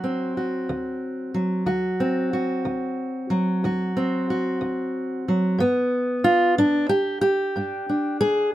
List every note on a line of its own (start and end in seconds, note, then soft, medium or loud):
0.00 0.30 D2 medium
0.00 1.33 F#3 soft
0.00 1.63 C4 soft
0.00 0.36 F#4 soft
0.37 1.64 F#4 soft
0.69 1.28 D2 medium
1.34 3.29 F#3 soft
1.66 2.26 D2 medium
1.66 2.32 F#4 medium
2.00 3.95 C4 medium
2.33 3.64 F#4 medium
2.65 3.24 D2 medium
3.30 5.27 F#3 medium
3.64 4.23 D2 medium
3.64 4.29 F#4 medium
3.97 5.56 C4 medium
4.30 5.57 F#4 soft
4.61 5.20 D2 medium
5.28 5.61 F#3 soft
5.58 6.18 G2 medium
5.58 6.91 B3 medium
6.24 6.58 F4 medium
6.58 7.18 G2 medium
6.58 6.89 D4 medium
6.89 7.20 G4 medium
7.21 8.20 G4 medium
7.56 8.15 G2 medium
7.56 7.89 D4 soft
7.89 8.55 D4 soft
8.21 8.54 G#4 medium